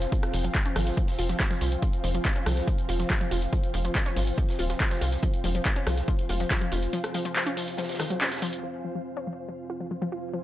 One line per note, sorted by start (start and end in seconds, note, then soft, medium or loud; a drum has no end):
0.00 8.62 F3 medium
0.00 8.62 C4 medium
0.00 8.62 F4 medium
0.00 8.63 C5 medium
0.00 8.63 F5 medium
0.00 8.63 G#5 medium
0.00 snare soft
0.00 closed hi-hat medium
0.12 0.17 F3 medium
0.12 kick loud
0.12 closed hi-hat medium
0.23 cross-stick medium
0.23 closed hi-hat medium
0.23 closed hi-hat soft
0.33 0.49 F1 loud
0.33 0.39 F3 medium
0.33 closed hi-hat medium
0.33 open hi-hat loud
0.44 0.49 F3 medium
0.44 closed hi-hat medium
0.54 kick loud
0.54 snare loud
0.54 clap loud
0.54 closed hi-hat medium
0.66 0.69 C#4 loud
0.66 closed hi-hat medium
0.76 0.92 G#1 loud
0.76 0.81 F3 medium
0.76 cross-stick medium
0.76 open hi-hat medium
0.76 open hi-hat loud
0.87 snare soft
0.87 closed hi-hat medium
0.97 1.05 F3 medium
0.97 kick loud
0.97 closed hi-hat medium
1.07 snare medium
1.07 open hi-hat medium
1.19 1.34 F1 medium
1.19 1.26 F4 medium
1.19 closed hi-hat medium
1.19 open hi-hat loud
1.29 1.34 F3 medium
1.29 snare soft
1.29 closed hi-hat medium
1.39 kick loud
1.39 snare loud
1.39 clap loud
1.39 closed hi-hat medium
1.39 closed hi-hat loud
1.50 1.54 F3 loud
1.50 snare medium
1.50 closed hi-hat medium
1.61 1.77 C2 medium
1.61 1.66 F4 medium
1.61 closed hi-hat medium
1.61 open hi-hat loud
1.72 closed hi-hat soft
1.82 1.88 F3 medium
1.82 kick loud
1.82 closed hi-hat medium
1.93 closed hi-hat medium
1.93 closed hi-hat soft
2.04 2.20 F1 loud
2.04 2.09 F3 medium
2.04 closed hi-hat medium
2.04 open hi-hat loud
2.14 2.20 F3 medium
2.14 closed hi-hat soft
2.25 kick loud
2.25 snare loud
2.25 clap loud
2.25 closed hi-hat medium
2.36 2.39 C#4 loud
2.36 closed hi-hat medium
2.46 2.62 C2 loud
2.46 2.51 F3 medium
2.46 cross-stick loud
2.46 closed hi-hat medium
2.46 open hi-hat loud
2.57 snare medium
2.57 closed hi-hat medium
2.67 2.75 F3 medium
2.67 kick loud
2.67 closed hi-hat medium
2.78 closed hi-hat soft
2.78 closed hi-hat medium
2.89 3.05 F1 loud
2.89 2.97 F4 medium
2.89 closed hi-hat medium
2.89 open hi-hat loud
2.99 3.05 F3 medium
2.99 snare soft
2.99 closed hi-hat medium
3.10 3.13 F3 medium
3.10 kick loud
3.10 snare loud
3.10 clap loud
3.10 closed hi-hat medium
3.21 3.24 F3 loud
3.21 closed hi-hat soft
3.31 3.47 F1 loud
3.31 3.37 F4 medium
3.31 closed hi-hat medium
3.31 open hi-hat loud
3.42 snare soft
3.42 closed hi-hat soft
3.53 3.58 F3 medium
3.53 kick loud
3.53 closed hi-hat medium
3.63 closed hi-hat medium
3.63 closed hi-hat soft
3.74 3.90 F1 loud
3.74 3.79 F3 medium
3.74 closed hi-hat medium
3.74 open hi-hat loud
3.85 3.90 F3 medium
3.85 closed hi-hat soft
3.95 kick loud
3.95 snare loud
3.95 clap loud
3.95 closed hi-hat medium
4.06 4.09 C#4 loud
4.06 closed hi-hat medium
4.16 4.32 G#1 loud
4.16 4.22 F3 medium
4.16 open hi-hat loud
4.16 open hi-hat medium
4.27 closed hi-hat medium
4.38 4.46 F3 medium
4.38 kick loud
4.38 closed hi-hat medium
4.49 snare medium
4.49 open hi-hat medium
4.59 4.75 D#1 medium
4.59 4.67 F4 medium
4.59 closed hi-hat medium
4.59 open hi-hat loud
4.69 4.75 F3 medium
4.69 snare soft
4.69 closed hi-hat medium
4.80 4.83 F3 medium
4.80 kick loud
4.80 snare loud
4.80 clap loud
4.80 closed hi-hat medium
4.91 4.94 F3 loud
4.91 snare medium
4.91 closed hi-hat medium
5.01 5.17 C2 medium
5.01 5.07 F4 medium
5.01 closed hi-hat medium
5.01 open hi-hat loud
5.12 snare medium
5.12 closed hi-hat soft
5.23 5.28 F3 medium
5.23 kick loud
5.23 closed hi-hat medium
5.23 closed hi-hat loud
5.34 closed hi-hat medium
5.34 closed hi-hat soft
5.44 5.60 F1 loud
5.44 5.49 F3 medium
5.44 closed hi-hat medium
5.44 open hi-hat loud
5.55 5.60 F3 medium
5.55 closed hi-hat soft
5.65 kick loud
5.65 snare loud
5.65 clap loud
5.65 closed hi-hat medium
5.76 5.79 C#4 loud
5.76 closed hi-hat medium
5.86 6.03 C2 loud
5.86 5.92 F3 medium
5.86 cross-stick loud
5.86 closed hi-hat medium
5.86 open hi-hat loud
5.96 snare soft
5.96 closed hi-hat medium
6.08 6.16 F3 medium
6.08 kick loud
6.08 closed hi-hat medium
6.19 closed hi-hat medium
6.19 closed hi-hat soft
6.29 6.45 F1 medium
6.29 6.37 F4 medium
6.29 closed hi-hat medium
6.29 open hi-hat loud
6.40 6.45 F3 medium
6.40 snare soft
6.40 closed hi-hat medium
6.51 6.54 F3 medium
6.51 kick loud
6.51 snare loud
6.51 clap loud
6.51 closed hi-hat medium
6.61 6.64 F3 loud
6.61 closed hi-hat medium
6.72 6.88 F1 loud
6.72 6.77 F4 medium
6.72 closed hi-hat medium
6.72 open hi-hat loud
6.82 snare soft
6.82 closed hi-hat medium
6.93 6.98 F3 medium
6.93 closed hi-hat medium
7.04 cross-stick medium
7.04 closed hi-hat soft
7.04 closed hi-hat medium
7.14 7.20 F3 medium
7.14 closed hi-hat medium
7.14 open hi-hat loud
7.25 7.30 F3 medium
7.25 closed hi-hat medium
7.36 snare loud
7.36 clap loud
7.36 closed hi-hat loud
7.36 closed hi-hat medium
7.46 7.49 C#4 loud
7.46 closed hi-hat medium
7.57 7.62 F3 medium
7.57 open hi-hat loud
7.57 open hi-hat medium
7.68 snare soft
7.68 closed hi-hat medium
7.78 7.86 F3 medium
7.78 snare medium
7.78 closed hi-hat medium
7.83 snare medium
7.83 closed hi-hat medium
7.89 snare medium
7.89 closed hi-hat medium
7.89 open hi-hat medium
7.94 snare medium
7.94 closed hi-hat medium
7.99 8.05 D#3 medium
7.99 cross-stick medium
7.99 snare loud
7.99 closed hi-hat medium
7.99 open hi-hat loud
8.10 8.15 F#3 medium
8.10 closed hi-hat medium
8.21 8.24 C#4 medium
8.21 snare medium
8.21 clap loud
8.21 closed hi-hat medium
8.26 snare medium
8.26 closed hi-hat medium
8.31 8.39 F4 medium
8.31 snare medium
8.31 closed hi-hat medium
8.36 snare medium
8.36 closed hi-hat medium
8.42 8.50 F3 loud
8.42 open hi-hat loud
8.53 closed hi-hat medium
8.63 10.44 F3 medium
8.63 8.69 F3 medium
8.63 10.44 C4 medium
8.63 10.44 F4 medium
8.84 8.90 F3 medium
8.84 10.44 C5 medium
8.84 10.44 F5 medium
8.95 9.00 F3 medium
9.17 9.20 C#4 loud
9.27 9.32 F3 medium
9.48 9.56 F3 medium
9.70 9.78 F4 medium
9.80 9.86 F3 medium
9.91 9.94 F3 medium
10.02 10.05 F3 loud
10.12 10.17 F4 medium
10.34 10.39 F3 medium